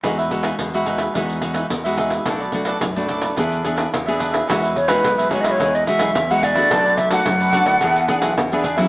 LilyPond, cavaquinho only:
\new Staff \with { instrumentName = "Cavaquinho" } { \time 4/4 \key e \major \tempo 4 = 108 <dis' gis' b' e''>16 <gis' b' e''>8 <dis' gis' b' e''>16 r16 <gis' b' e''>16 <dis' gis' b' e''>16 <gis' b' e''>16 <dis' gis' b' e''>8 <dis' gis' b' e''>16 <dis' gis' b' e''>16 r16 <gis' b' e''>16 <dis' gis' b' e''>16 <gis' b' e''>16 | <d' a' b' d''>16 <a' b' d''>8 <d' a' b' d''>16 r16 <a' b' d''>16 <d' a' b' d''>16 <a' b' d''>16 <d' gis' b' e''>8 <d' gis' b' e''>16 <d' gis' b' e''>16 r16 <gis' b' e''>16 <d' gis' b' e''>16 <gis' b' e''>16 | <dis' gis' b' e''>16 <gis' b' e''>8 <dis' gis' b' e''>16 r16 <gis' b' e''>16 <dis' gis' b' e''>16 <gis' b' e''>16 <dis' gis' b' e''>8 <dis' gis' b' e''>16 <dis' gis' b' e''>16 r16 <gis' b' e''>16 <dis' gis' b' e''>16 <gis' b' e''>16 | <d' a' b' d''>16 <a' b' d''>8 <d' a' b' d''>16 r16 <a' b' d''>16 <d' a' b' d''>16 <a' b' d''>16 <d' gis' b' e''>8 <d' gis' b' e''>16 <d' gis' b' e''>16 r16 <gis' b' e''>16 <d' gis' b' e''>16 <gis' b' e''>16 | }